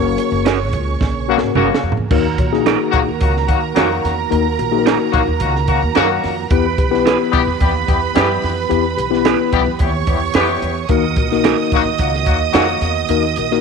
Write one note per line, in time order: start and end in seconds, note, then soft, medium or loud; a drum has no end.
0.00 0.15 F#1 medium
0.00 2.07 C#3 medium
0.00 0.48 A#3 medium
0.00 2.07 A#3 medium
0.00 0.48 C#4 medium
0.00 0.48 F#4 medium
0.00 2.09 G#4 medium
0.00 0.48 A#4 medium
0.00 1.80 C#5 medium
0.00 1.80 C#6 loud
0.18 closed hi-hat medium
0.32 0.73 F#1 loud
0.45 0.57 C#4 medium
0.45 0.57 F#4 medium
0.45 0.58 A#4 medium
0.45 snare loud
0.45 closed hi-hat loud
0.73 0.97 C#2 medium
0.73 kick medium
0.73 closed hi-hat medium
1.01 1.37 A#1 medium
1.01 kick medium
1.01 snare medium
1.29 1.38 C#3 loud
1.29 1.38 F#3 medium
1.29 1.37 A#3 medium
1.29 1.72 A#3 medium
1.29 1.71 C#4 medium
1.29 1.71 F#4 medium
1.29 1.38 F#4 loud
1.29 1.72 A#4 medium
1.38 snare medium
1.42 1.54 G#1 medium
1.55 1.68 F#1 medium
1.55 1.95 C#3 loud
1.55 1.95 F#3 medium
1.55 1.95 A#3 medium
1.55 1.67 C#4 medium
1.55 1.95 F#4 loud
1.55 1.67 F#4 medium
1.55 1.68 A#4 medium
1.55 mid tom medium
1.74 snare loud
1.83 1.95 F2 medium
1.92 floor tom medium
1.97 2.09 E2 medium
2.11 2.40 D#2 loud
2.11 6.47 D#3 medium
2.11 2.25 A#3 medium
2.11 6.47 A#3 medium
2.11 2.25 D#4 medium
2.11 2.26 F#4 medium
2.11 6.47 F#4 medium
2.11 2.25 A#4 medium
2.11 6.47 A#4 medium
2.11 6.47 A#5 medium
2.11 kick loud
2.11 crash loud
2.38 2.74 A#1 medium
2.38 2.46 F#4 medium
2.38 2.46 C#5 medium
2.38 kick loud
2.38 closed hi-hat medium
2.53 3.10 A#3 medium
2.53 3.10 D#4 medium
2.53 3.10 F#4 medium
2.53 3.09 G#4 medium
2.53 snare soft
2.66 2.77 D#4 medium
2.66 2.77 F#4 medium
2.66 2.78 A#4 loud
2.66 snare loud
2.66 closed hi-hat medium
2.91 3.06 A#1 medium
2.91 3.01 D#3 medium
2.91 3.01 F#3 medium
2.91 3.01 A#3 loud
2.91 3.01 F#4 loud
2.91 kick loud
2.91 closed hi-hat medium
3.08 3.19 D#2 medium
3.20 3.45 C#2 medium
3.20 3.32 D#3 medium
3.20 3.33 F#3 medium
3.20 3.33 A#3 medium
3.20 3.33 F#4 medium
3.20 kick medium
3.20 closed hi-hat medium
3.37 snare soft
3.47 3.72 D#2 medium
3.47 3.60 D#3 medium
3.47 3.60 F#3 medium
3.47 3.60 A#3 medium
3.47 3.60 F#4 medium
3.47 kick medium
3.47 closed hi-hat medium
3.75 4.00 F2 medium
3.75 4.15 D#3 medium
3.75 4.15 F#3 medium
3.75 4.15 A#3 medium
3.75 3.87 D#4 medium
3.75 4.15 F#4 medium
3.75 3.88 F#4 medium
3.75 3.88 A#4 medium
3.75 snare loud
3.75 closed hi-hat loud
4.04 4.28 E2 medium
4.04 snare soft
4.04 closed hi-hat medium
4.31 4.55 D#2 loud
4.31 4.45 A#3 medium
4.31 4.45 D#4 medium
4.31 4.45 F#4 medium
4.31 4.45 A#4 medium
4.31 closed hi-hat medium
4.59 4.95 A#1 medium
4.59 4.66 F#4 medium
4.59 4.66 A#4 medium
4.59 closed hi-hat medium
4.71 5.29 A#3 medium
4.71 5.29 D#4 medium
4.71 5.29 F#4 medium
4.71 4.79 G#4 medium
4.79 5.32 A#4 medium
4.86 4.97 D#4 medium
4.86 4.97 F#4 medium
4.86 4.98 A#4 loud
4.86 snare loud
4.86 closed hi-hat loud
5.12 5.26 A#1 loud
5.12 5.22 D#3 loud
5.12 5.21 F#3 medium
5.12 5.21 A#3 loud
5.12 5.21 F#4 loud
5.12 kick loud
5.12 closed hi-hat medium
5.27 5.39 D#2 medium
5.40 5.77 C#2 medium
5.40 5.53 D#3 medium
5.40 5.53 F#3 medium
5.40 5.53 A#3 medium
5.40 5.53 F#4 medium
5.40 kick medium
5.40 closed hi-hat medium
5.56 snare soft
5.68 5.80 D#3 medium
5.68 5.80 F#3 medium
5.68 5.80 A#3 medium
5.68 5.80 F#4 medium
5.68 kick medium
5.68 closed hi-hat medium
5.83 5.94 D#2 medium
5.95 6.20 F#2 medium
5.95 6.35 D#3 loud
5.95 6.35 F#3 medium
5.95 6.35 A#3 loud
5.95 6.07 D#4 medium
5.95 6.35 F#4 loud
5.95 6.07 F#4 medium
5.95 6.07 A#4 medium
5.95 snare loud
5.95 closed hi-hat medium
6.23 6.47 F2 medium
6.23 snare soft
6.23 open hi-hat medium
6.50 6.74 E2 loud
6.50 10.86 E3 medium
6.50 10.86 B3 medium
6.50 6.65 B3 medium
6.50 6.65 E4 medium
6.50 10.86 G4 medium
6.50 6.65 G4 medium
6.50 6.65 B4 medium
6.50 9.77 B4 medium
6.50 9.77 B5 medium
6.50 kick loud
6.50 closed hi-hat medium
6.78 7.14 B1 medium
6.78 6.85 G4 medium
6.78 6.85 B4 loud
6.78 kick medium
6.78 closed hi-hat medium
6.91 7.48 B3 medium
6.91 7.48 E4 medium
6.91 7.48 G4 medium
6.91 7.48 B4 loud
6.91 snare soft
7.06 7.17 E4 medium
7.06 7.17 G4 medium
7.06 7.17 B4 loud
7.06 snare loud
7.06 closed hi-hat loud
7.31 7.45 B1 medium
7.31 7.41 E3 loud
7.31 7.41 G3 loud
7.31 7.41 B3 loud
7.31 7.41 G4 loud
7.31 kick loud
7.31 closed hi-hat medium
7.47 7.59 E2 medium
7.60 7.84 D#2 loud
7.60 7.72 E3 medium
7.60 7.72 G3 medium
7.60 7.72 B3 medium
7.60 7.72 G4 medium
7.60 kick medium
7.60 closed hi-hat medium
7.87 8.12 E2 medium
7.87 7.99 E3 medium
7.87 7.99 G3 medium
7.87 7.99 B3 medium
7.87 7.99 G4 medium
7.87 kick medium
7.87 closed hi-hat medium
8.15 8.39 F#2 medium
8.15 8.54 E3 medium
8.15 8.54 G3 medium
8.15 8.54 B3 medium
8.15 8.27 E4 medium
8.15 8.54 G4 loud
8.15 8.27 G4 loud
8.15 8.27 B4 medium
8.15 snare loud
8.15 closed hi-hat loud
8.43 8.67 F2 medium
8.43 snare soft
8.43 open hi-hat medium
8.69 8.94 E2 loud
8.69 8.84 B3 medium
8.69 8.84 E4 medium
8.69 8.84 G4 medium
8.69 8.84 B4 medium
8.69 closed hi-hat medium
8.97 9.33 B1 medium
8.97 9.04 G4 medium
8.97 9.05 B4 medium
8.97 closed hi-hat medium
9.10 9.68 B3 medium
9.10 9.68 E4 medium
9.10 9.68 G4 medium
9.10 9.68 B4 medium
9.10 snare soft
9.25 9.36 E4 medium
9.25 9.37 G4 medium
9.25 9.37 B4 medium
9.25 snare loud
9.25 closed hi-hat medium
9.52 9.64 B1 loud
9.52 9.62 E3 loud
9.52 9.62 G3 loud
9.52 9.62 B3 loud
9.52 9.62 G4 loud
9.52 kick loud
9.52 closed hi-hat medium
9.66 9.78 E2 medium
9.79 10.04 D#2 medium
9.79 9.92 E3 medium
9.79 9.92 G3 medium
9.79 9.92 B3 medium
9.79 9.92 G4 medium
9.79 10.88 C#5 medium
9.79 10.88 C#6 loud
9.79 kick loud
9.79 closed hi-hat medium
10.07 10.31 E2 medium
10.07 10.19 E3 medium
10.07 10.19 G3 medium
10.07 10.19 B3 medium
10.07 10.19 G4 medium
10.07 kick medium
10.07 closed hi-hat medium
10.34 10.58 F2 medium
10.34 10.74 E3 medium
10.34 10.74 G3 medium
10.34 10.74 B3 medium
10.34 10.46 E4 medium
10.34 10.74 G4 loud
10.34 10.46 G4 medium
10.34 10.47 B4 medium
10.34 snare loud
10.34 closed hi-hat loud
10.62 10.86 E2 medium
10.62 closed hi-hat medium
10.89 11.18 D#2 loud
10.89 13.61 D#3 medium
10.89 11.04 A#3 medium
10.89 13.61 A#3 medium
10.89 11.04 D#4 medium
10.89 11.04 F#4 medium
10.89 13.61 F#4 medium
10.89 11.04 A#4 medium
10.89 13.61 D#5 medium
10.89 13.61 D#6 loud
10.89 kick loud
10.89 closed hi-hat medium
11.16 11.53 A#1 medium
11.16 11.25 F#4 medium
11.16 11.25 A#4 medium
11.16 kick medium
11.16 closed hi-hat medium
11.32 11.88 A#3 medium
11.32 11.88 D#4 medium
11.32 11.89 F#4 medium
11.32 11.88 A#4 medium
11.32 snare soft
11.44 11.55 D#4 medium
11.44 11.56 F#4 medium
11.44 11.56 A#4 loud
11.44 snare loud
11.44 closed hi-hat loud
11.72 11.84 A#1 medium
11.72 11.82 D#3 loud
11.72 11.82 F#3 loud
11.72 11.81 A#3 medium
11.72 11.82 F#4 loud
11.72 kick medium
11.72 closed hi-hat medium
11.85 11.97 D#2 medium
11.98 12.23 C#2 medium
11.98 12.11 D#3 medium
11.98 12.11 F#3 medium
11.98 12.11 A#3 medium
11.98 12.11 F#4 medium
11.98 kick medium
11.98 closed hi-hat loud
12.14 snare soft
12.25 12.51 D#2 medium
12.25 12.37 D#3 medium
12.25 12.38 F#3 medium
12.25 12.38 A#3 medium
12.25 12.38 F#4 medium
12.25 kick medium
12.25 closed hi-hat medium
12.52 12.78 F2 medium
12.52 12.92 D#3 medium
12.52 12.93 F#3 medium
12.52 12.93 A#3 medium
12.52 12.65 D#4 medium
12.52 12.93 F#4 loud
12.52 12.65 F#4 medium
12.52 12.66 A#4 medium
12.52 snare loud
12.52 closed hi-hat loud
12.81 13.05 E2 medium
12.81 snare soft
12.81 closed hi-hat medium
13.09 13.33 D#2 loud
13.09 13.24 A#3 medium
13.09 13.24 D#4 medium
13.09 13.24 F#4 medium
13.09 13.24 A#4 loud
13.09 closed hi-hat loud
13.36 13.61 A#1 medium
13.36 13.45 F#4 medium
13.36 13.45 A#4 medium
13.36 closed hi-hat medium
13.51 13.61 A#3 medium
13.51 13.61 D#4 medium
13.51 13.61 F#4 medium
13.51 13.61 A#4 loud
13.51 snare soft